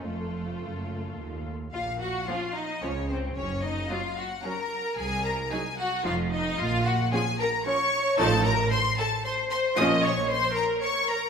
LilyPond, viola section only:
\new Staff \with { instrumentName = "Viola section" } { \time 3/4 \key bes \minor \tempo 4 = 112 a2~ a8 r8 | r4 <f des'>4 <f des'>4 | r4 <ges des'>4 <ges des'>4 | r4 <ges ees'>4 <f ees'>4 |
r4 <f des'>4 <f des'>4 | <f ees'>8 r2 r8 | <f des'>8 r2 r8 | }